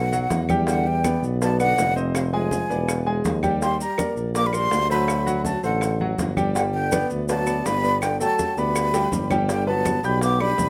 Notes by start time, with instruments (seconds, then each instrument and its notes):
Already playing: tuba B1, flute F#5
0.12 grand piano F#3 F#4 F#5, high bongo, high conga, maracas
0.30 tuba E2, high bongo, low bongo, high conga, maracas
0.49 grand piano G3 G4 G5, high conga, claves, maracas
0.67 trombone D3, grand piano G3 G4 G5, flute F#5, high bongo, maracas
0.86 trombone E3, flute G5, high conga
1.04 grand piano B3 B4 D5, high bongo, high conga, claves, maracas
1.22 tuba B1, high conga, maracas
1.41 trombone F#3, grand piano B3 B4 D5, flute A5, high bongo, high conga, maracas
1.59 trombone D3, grand piano B3 B4 D5, flute F#5, high conga, claves, maracas
1.78 tuba F1, high bongo, low bongo, high conga, maracas
1.96 grand piano C4 C5 D#5, high conga, maracas
2.15 trombone C3, flute F5, high bongo, high conga, claves, maracas
2.33 trombone F3, grand piano G#3 G#4 G#5, flute G#5, high bongo, high conga
2.51 high bongo, high conga, maracas
2.69 tuba E1, grand piano B3 B4 D5, high bongo, high conga, maracas
2.88 high bongo, high conga, claves, maracas
3.06 grand piano G#3 G#4 G#5, high bongo, high conga
3.25 tuba D#2, high bongo, low bongo, high conga, maracas
3.43 grand piano G3 G4 G5, high conga, claves, maracas
3.62 grand piano G3 G4 G5, trombone G3, flute C6, high bongo, high conga, maracas
3.81 trombone G3, flute A#5, high conga, maracas
3.98 grand piano A#3 A#4 D5, high bongo, high conga, claves, maracas
4.16 tuba A#1, high conga, maracas
4.35 grand piano A#3 A#4 D5, trombone A#3, flute D6, high bongo, high conga, maracas
4.47 trombone G3, flute B5
4.53 trombone G3, grand piano A#3 A#4 D5, flute C6, high conga, claves, maracas
4.71 tuba D2, high bongo, low bongo, high conga, maracas
4.89 trombone F#3, grand piano A3 A4 C5, flute B5, high conga, maracas
5.08 high bongo, high conga, claves, maracas
5.26 grand piano F#3 F#4 F#5, high bongo, high conga, maracas
5.45 trombone F#3, flute A5, high bongo, high conga, maracas
5.63 tuba A1, trombone D3, grand piano A3 A4 C5, flute F#5, high bongo, high conga, maracas
5.81 high bongo, high conga, claves, maracas
6.00 grand piano F#3 F#4 F#5, high bongo, high conga
6.18 tuba G1, high bongo, low bongo, high conga, maracas
6.37 grand piano G3 G4 G5, high conga, claves, maracas
6.55 trombone D3, grand piano G3 G4 G5, flute F#5, high bongo, high conga, maracas
6.74 trombone D3, flute G5, high conga
6.92 grand piano B3 B4 D5, high bongo, high conga, claves, maracas
7.10 tuba D2, high conga, maracas
7.29 trombone F#3, grand piano B3 B4 D5, flute A5, high bongo, high conga, maracas
7.46 grand piano B3 B4 D5, high conga, claves, maracas
7.66 tuba G1, trombone G3, flute B5, high bongo, low bongo, high conga, maracas
7.83 grand piano B3 B4 D5, high conga, maracas
8.02 trombone D3, flute G5, high bongo, high conga, claves, maracas
8.20 trombone F#3, grand piano A3 A4 G5, flute A5, high bongo, high conga, maracas
8.39 high bongo, high conga, maracas
8.57 tuba D2, trombone G3, grand piano B3 B4 D5, flute B5, high bongo, high conga, maracas
8.76 high bongo, high conga, claves, maracas
8.94 grand piano G3 G4 G5, high bongo, high conga, maracas
9.12 tuba G1, low bongo, high conga, maracas
9.30 grand piano G3 G4 G5, low bongo, high conga, claves, maracas
9.49 trombone D3, grand piano G3 G4 G5, flute G5, high bongo, high conga, maracas
9.67 trombone F#3, grand piano B3 B4 B5, flute A5, high bongo, high conga
9.85 high bongo, high conga, claves, maracas
10.03 tuba B1, trombone G3, grand piano G4 G5 G6, flute B5, high bongo, high conga, maracas
10.21 trombone B3, flute D6, high bongo, high conga, maracas
10.40 trombone G3, grand piano D4 D5 D6, flute B5, high conga, claves
10.58 tuba C2, high bongo, low bongo, high conga, maracas